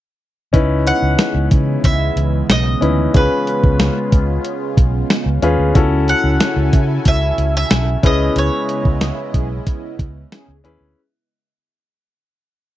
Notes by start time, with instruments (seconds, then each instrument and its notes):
0.53 fingered electric bass C#2, analog synth pad C#3 E3 G#3 B3 C#4, grand piano C#4 D#4 E4 B4, kick, closed hi-hat
0.87 mandolin F#5, closed hi-hat
1.02 fingered electric bass C#2
1.19 snare, closed hi-hat
1.34 fingered electric bass C#2
1.51 fingered electric bass C#3, kick, closed hi-hat
1.84 fingered electric bass C#2, mandolin E5, kick, closed hi-hat
2.16 fingered electric bass C#2, closed hi-hat
2.49 fingered electric bass B1, mandolin D#5, snare, closed hi-hat
2.81 fingered electric bass D2, grand piano C#4 D#4 E4 B4, closed hi-hat
3.14 fingered electric bass C#2, analog synth pad C#3 G#3 F4, grand piano C#4 F4 G#4 B4, mandolin B4, kick, closed hi-hat
3.47 closed hi-hat
3.63 fingered electric bass C#2, kick
3.79 snare, closed hi-hat
4.12 fingered electric bass C#2, kick, closed hi-hat
4.45 closed hi-hat
4.77 fingered electric bass B1, kick, closed hi-hat
5.10 snare, closed hi-hat
5.26 fingered electric bass C#2
5.42 fingered electric bass D#2, grand piano C#4 F4 G#4 B4, closed hi-hat
5.59 fingered electric bass D2
5.75 fingered electric bass C#2, grand piano C#4 E4 F#4 A4, analog synth pad C#4 E4 A4 G#5, kick, closed hi-hat
6.08 mandolin F#5, closed hi-hat
6.24 fingered electric bass C#2
6.40 snare, closed hi-hat
6.56 fingered electric bass C#2
6.73 fingered electric bass C#3, kick, closed hi-hat
7.05 fingered electric bass C#2, mandolin E5, kick, closed hi-hat
7.38 fingered electric bass C#2, closed hi-hat
7.57 mandolin E5
7.71 fingered electric bass B1, snare, closed hi-hat
8.03 fingered electric bass C#2, analog synth pad C#3 G#3 B3 E4 D#5, grand piano C#4 E4 G#4 B4, mandolin D#5, kick, closed hi-hat
8.36 fingered electric bass C#2, mandolin C#5, closed hi-hat
8.69 closed hi-hat
8.85 fingered electric bass C#2, kick
9.01 snare, closed hi-hat
9.34 fingered electric bass B1, analog polysynth C#4 E4 G#4, kick, closed hi-hat
9.67 kick, closed hi-hat
9.99 fingered electric bass C#2, kick, closed hi-hat
10.32 analog polysynth C#4 E4 G#4, snare, closed hi-hat
10.48 fingered electric bass C#2
10.64 fingered electric bass D#2, grand piano C#4 E4 G#4 B4, closed hi-hat
10.81 fingered electric bass D2